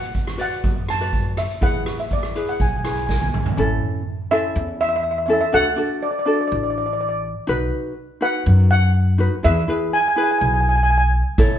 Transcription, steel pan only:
0, 0, Header, 1, 2, 480
1, 0, Start_track
1, 0, Key_signature, 3, "major"
1, 0, Tempo, 488202
1, 1596, Time_signature, 4, 2, 24, 8
1, 11392, End_track
2, 0, Start_track
2, 0, Title_t, "Steel pan"
2, 0, Program_c, 0, 114
2, 0, Note_on_c, 0, 78, 65
2, 395, Note_off_c, 0, 78, 0
2, 406, Note_on_c, 0, 78, 68
2, 886, Note_on_c, 0, 81, 85
2, 895, Note_off_c, 0, 78, 0
2, 1358, Note_on_c, 0, 76, 76
2, 1375, Note_off_c, 0, 81, 0
2, 1581, Note_off_c, 0, 76, 0
2, 1601, Note_on_c, 0, 78, 82
2, 1935, Note_off_c, 0, 78, 0
2, 1963, Note_on_c, 0, 76, 63
2, 2084, Note_off_c, 0, 76, 0
2, 2094, Note_on_c, 0, 74, 67
2, 2449, Note_on_c, 0, 78, 72
2, 2458, Note_off_c, 0, 74, 0
2, 2568, Note_off_c, 0, 78, 0
2, 2570, Note_on_c, 0, 80, 60
2, 2631, Note_off_c, 0, 80, 0
2, 2718, Note_on_c, 0, 80, 46
2, 2780, Note_off_c, 0, 80, 0
2, 2792, Note_on_c, 0, 80, 42
2, 2851, Note_off_c, 0, 80, 0
2, 2863, Note_on_c, 0, 80, 49
2, 2929, Note_off_c, 0, 80, 0
2, 2941, Note_on_c, 0, 80, 42
2, 2999, Note_off_c, 0, 80, 0
2, 3010, Note_on_c, 0, 80, 52
2, 3076, Note_off_c, 0, 80, 0
2, 3089, Note_on_c, 0, 80, 45
2, 3147, Note_off_c, 0, 80, 0
2, 3159, Note_on_c, 0, 80, 53
2, 3225, Note_off_c, 0, 80, 0
2, 4240, Note_on_c, 0, 76, 92
2, 4715, Note_off_c, 0, 76, 0
2, 4727, Note_on_c, 0, 76, 96
2, 4795, Note_off_c, 0, 76, 0
2, 4807, Note_on_c, 0, 76, 66
2, 4863, Note_off_c, 0, 76, 0
2, 4875, Note_on_c, 0, 76, 72
2, 4937, Note_off_c, 0, 76, 0
2, 4949, Note_on_c, 0, 76, 57
2, 5012, Note_off_c, 0, 76, 0
2, 5023, Note_on_c, 0, 76, 64
2, 5083, Note_off_c, 0, 76, 0
2, 5095, Note_on_c, 0, 76, 58
2, 5160, Note_off_c, 0, 76, 0
2, 5172, Note_on_c, 0, 76, 63
2, 5232, Note_off_c, 0, 76, 0
2, 5243, Note_on_c, 0, 76, 59
2, 5304, Note_off_c, 0, 76, 0
2, 5316, Note_on_c, 0, 76, 76
2, 5392, Note_off_c, 0, 76, 0
2, 5447, Note_on_c, 0, 78, 126
2, 5924, Note_on_c, 0, 74, 75
2, 5941, Note_off_c, 0, 78, 0
2, 5994, Note_off_c, 0, 74, 0
2, 6007, Note_on_c, 0, 74, 59
2, 6072, Note_off_c, 0, 74, 0
2, 6086, Note_on_c, 0, 74, 65
2, 6138, Note_off_c, 0, 74, 0
2, 6150, Note_on_c, 0, 74, 60
2, 6217, Note_off_c, 0, 74, 0
2, 6234, Note_on_c, 0, 74, 59
2, 6290, Note_off_c, 0, 74, 0
2, 6302, Note_on_c, 0, 74, 54
2, 6354, Note_off_c, 0, 74, 0
2, 6366, Note_on_c, 0, 74, 62
2, 6429, Note_off_c, 0, 74, 0
2, 6441, Note_on_c, 0, 74, 48
2, 6508, Note_off_c, 0, 74, 0
2, 6520, Note_on_c, 0, 74, 60
2, 6579, Note_off_c, 0, 74, 0
2, 6591, Note_on_c, 0, 74, 51
2, 6653, Note_off_c, 0, 74, 0
2, 6664, Note_on_c, 0, 74, 58
2, 6733, Note_off_c, 0, 74, 0
2, 6745, Note_on_c, 0, 74, 54
2, 6804, Note_off_c, 0, 74, 0
2, 6815, Note_on_c, 0, 74, 61
2, 6876, Note_off_c, 0, 74, 0
2, 6888, Note_on_c, 0, 74, 59
2, 6955, Note_off_c, 0, 74, 0
2, 6968, Note_on_c, 0, 74, 61
2, 7032, Note_off_c, 0, 74, 0
2, 8087, Note_on_c, 0, 78, 90
2, 8549, Note_off_c, 0, 78, 0
2, 8561, Note_on_c, 0, 78, 100
2, 9286, Note_on_c, 0, 76, 99
2, 9302, Note_off_c, 0, 78, 0
2, 9767, Note_on_c, 0, 80, 95
2, 9776, Note_off_c, 0, 76, 0
2, 9827, Note_off_c, 0, 80, 0
2, 9839, Note_on_c, 0, 80, 72
2, 9900, Note_off_c, 0, 80, 0
2, 9912, Note_on_c, 0, 80, 72
2, 9974, Note_off_c, 0, 80, 0
2, 9986, Note_on_c, 0, 80, 63
2, 10052, Note_off_c, 0, 80, 0
2, 10063, Note_on_c, 0, 80, 69
2, 10128, Note_off_c, 0, 80, 0
2, 10140, Note_on_c, 0, 80, 67
2, 10199, Note_off_c, 0, 80, 0
2, 10211, Note_on_c, 0, 80, 70
2, 10265, Note_off_c, 0, 80, 0
2, 10276, Note_on_c, 0, 80, 55
2, 10344, Note_off_c, 0, 80, 0
2, 10360, Note_on_c, 0, 80, 58
2, 10415, Note_off_c, 0, 80, 0
2, 10426, Note_on_c, 0, 80, 58
2, 10492, Note_off_c, 0, 80, 0
2, 10511, Note_on_c, 0, 80, 68
2, 10564, Note_off_c, 0, 80, 0
2, 10575, Note_on_c, 0, 80, 61
2, 10638, Note_off_c, 0, 80, 0
2, 10650, Note_on_c, 0, 80, 71
2, 10708, Note_off_c, 0, 80, 0
2, 10720, Note_on_c, 0, 80, 66
2, 10781, Note_off_c, 0, 80, 0
2, 10793, Note_on_c, 0, 80, 75
2, 10860, Note_off_c, 0, 80, 0
2, 11392, End_track
0, 0, End_of_file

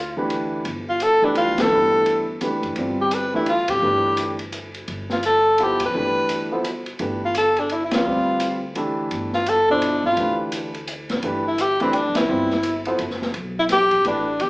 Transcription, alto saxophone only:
0, 0, Header, 1, 2, 480
1, 0, Start_track
1, 0, Tempo, 352319
1, 896, Time_signature, 3, 2, 24, 8
1, 19749, End_track
2, 0, Start_track
2, 0, Title_t, "Alto saxophone"
2, 0, Program_c, 0, 65
2, 0, Note_on_c, 0, 65, 77
2, 188, Note_off_c, 0, 65, 0
2, 1218, Note_on_c, 0, 65, 77
2, 1392, Note_on_c, 0, 69, 90
2, 1413, Note_off_c, 0, 65, 0
2, 1700, Note_on_c, 0, 62, 65
2, 1720, Note_off_c, 0, 69, 0
2, 1862, Note_off_c, 0, 62, 0
2, 1870, Note_on_c, 0, 65, 80
2, 2181, Note_on_c, 0, 69, 88
2, 2202, Note_off_c, 0, 65, 0
2, 3128, Note_off_c, 0, 69, 0
2, 4100, Note_on_c, 0, 67, 75
2, 4284, Note_on_c, 0, 71, 85
2, 4305, Note_off_c, 0, 67, 0
2, 4564, Note_off_c, 0, 71, 0
2, 4572, Note_on_c, 0, 64, 68
2, 4732, Note_off_c, 0, 64, 0
2, 4758, Note_on_c, 0, 65, 75
2, 5041, Note_on_c, 0, 67, 76
2, 5061, Note_off_c, 0, 65, 0
2, 5998, Note_off_c, 0, 67, 0
2, 6975, Note_on_c, 0, 65, 63
2, 7134, Note_off_c, 0, 65, 0
2, 7160, Note_on_c, 0, 69, 80
2, 7671, Note_on_c, 0, 67, 80
2, 7691, Note_off_c, 0, 69, 0
2, 7943, Note_off_c, 0, 67, 0
2, 7977, Note_on_c, 0, 71, 92
2, 9032, Note_off_c, 0, 71, 0
2, 9879, Note_on_c, 0, 65, 68
2, 10027, Note_off_c, 0, 65, 0
2, 10050, Note_on_c, 0, 69, 85
2, 10349, Note_on_c, 0, 62, 73
2, 10370, Note_off_c, 0, 69, 0
2, 10529, Note_on_c, 0, 64, 71
2, 10549, Note_off_c, 0, 62, 0
2, 10686, Note_off_c, 0, 64, 0
2, 10694, Note_on_c, 0, 64, 61
2, 10840, Note_on_c, 0, 65, 74
2, 10861, Note_off_c, 0, 64, 0
2, 11778, Note_off_c, 0, 65, 0
2, 12732, Note_on_c, 0, 65, 80
2, 12926, Note_on_c, 0, 69, 94
2, 12947, Note_off_c, 0, 65, 0
2, 13211, Note_off_c, 0, 69, 0
2, 13226, Note_on_c, 0, 62, 81
2, 13659, Note_off_c, 0, 62, 0
2, 13706, Note_on_c, 0, 65, 75
2, 14139, Note_off_c, 0, 65, 0
2, 15640, Note_on_c, 0, 64, 78
2, 15812, Note_on_c, 0, 67, 91
2, 15833, Note_off_c, 0, 64, 0
2, 16095, Note_off_c, 0, 67, 0
2, 16103, Note_on_c, 0, 60, 69
2, 16270, Note_on_c, 0, 62, 70
2, 16291, Note_off_c, 0, 60, 0
2, 16575, Note_on_c, 0, 64, 79
2, 16595, Note_off_c, 0, 62, 0
2, 17527, Note_off_c, 0, 64, 0
2, 18517, Note_on_c, 0, 64, 79
2, 18590, Note_off_c, 0, 64, 0
2, 18696, Note_on_c, 0, 67, 96
2, 19125, Note_off_c, 0, 67, 0
2, 19181, Note_on_c, 0, 62, 74
2, 19642, Note_on_c, 0, 67, 89
2, 19662, Note_off_c, 0, 62, 0
2, 19749, Note_off_c, 0, 67, 0
2, 19749, End_track
0, 0, End_of_file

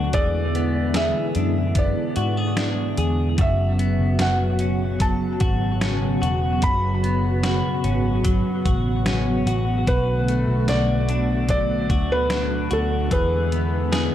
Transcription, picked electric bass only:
0, 0, Header, 1, 2, 480
1, 0, Start_track
1, 0, Tempo, 810811
1, 83, Time_signature, 4, 2, 24, 8
1, 8376, End_track
2, 0, Start_track
2, 0, Title_t, "Picked electric bass"
2, 0, Program_c, 0, 34
2, 0, Note_on_c, 0, 38, 75
2, 71, Note_off_c, 0, 38, 0
2, 82, Note_on_c, 0, 40, 85
2, 659, Note_off_c, 0, 40, 0
2, 804, Note_on_c, 0, 42, 68
2, 1146, Note_off_c, 0, 42, 0
2, 1284, Note_on_c, 0, 44, 72
2, 1740, Note_off_c, 0, 44, 0
2, 1765, Note_on_c, 0, 40, 69
2, 1992, Note_off_c, 0, 40, 0
2, 2004, Note_on_c, 0, 30, 84
2, 2346, Note_off_c, 0, 30, 0
2, 2362, Note_on_c, 0, 30, 72
2, 2477, Note_off_c, 0, 30, 0
2, 2483, Note_on_c, 0, 30, 88
2, 3180, Note_off_c, 0, 30, 0
2, 3205, Note_on_c, 0, 32, 59
2, 3660, Note_off_c, 0, 32, 0
2, 3685, Note_on_c, 0, 28, 70
2, 3912, Note_off_c, 0, 28, 0
2, 3924, Note_on_c, 0, 30, 88
2, 4500, Note_off_c, 0, 30, 0
2, 4645, Note_on_c, 0, 32, 72
2, 4986, Note_off_c, 0, 32, 0
2, 5125, Note_on_c, 0, 33, 75
2, 5580, Note_off_c, 0, 33, 0
2, 5604, Note_on_c, 0, 33, 80
2, 5831, Note_off_c, 0, 33, 0
2, 5845, Note_on_c, 0, 35, 80
2, 6186, Note_off_c, 0, 35, 0
2, 6206, Note_on_c, 0, 35, 79
2, 6319, Note_off_c, 0, 35, 0
2, 6330, Note_on_c, 0, 35, 79
2, 7023, Note_off_c, 0, 35, 0
2, 7043, Note_on_c, 0, 38, 64
2, 7500, Note_off_c, 0, 38, 0
2, 7530, Note_on_c, 0, 38, 77
2, 7755, Note_off_c, 0, 38, 0
2, 7764, Note_on_c, 0, 40, 85
2, 8340, Note_off_c, 0, 40, 0
2, 8376, End_track
0, 0, End_of_file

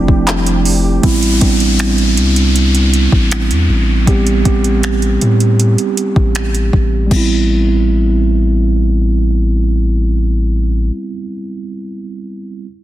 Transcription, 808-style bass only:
0, 0, Header, 1, 2, 480
1, 0, Start_track
1, 0, Key_signature, 0, "minor"
1, 0, Tempo, 759494
1, 653, Time_signature, 4, 2, 24, 8
1, 8112, End_track
2, 0, Start_track
2, 0, Title_t, "808-style bass"
2, 0, Program_c, 0, 38
2, 0, Note_on_c, 0, 29, 105
2, 630, Note_off_c, 0, 29, 0
2, 656, Note_on_c, 0, 33, 109
2, 885, Note_off_c, 0, 33, 0
2, 896, Note_on_c, 0, 33, 98
2, 1377, Note_on_c, 0, 36, 93
2, 1387, Note_off_c, 0, 33, 0
2, 1950, Note_off_c, 0, 36, 0
2, 1977, Note_on_c, 0, 33, 101
2, 2217, Note_on_c, 0, 40, 97
2, 2227, Note_off_c, 0, 33, 0
2, 2330, Note_off_c, 0, 40, 0
2, 2337, Note_on_c, 0, 33, 95
2, 2566, Note_off_c, 0, 33, 0
2, 2577, Note_on_c, 0, 33, 114
2, 2806, Note_off_c, 0, 33, 0
2, 3299, Note_on_c, 0, 45, 97
2, 3642, Note_off_c, 0, 45, 0
2, 3896, Note_on_c, 0, 33, 90
2, 4240, Note_off_c, 0, 33, 0
2, 4257, Note_on_c, 0, 33, 95
2, 4486, Note_off_c, 0, 33, 0
2, 4496, Note_on_c, 0, 33, 106
2, 6895, Note_off_c, 0, 33, 0
2, 8112, End_track
0, 0, End_of_file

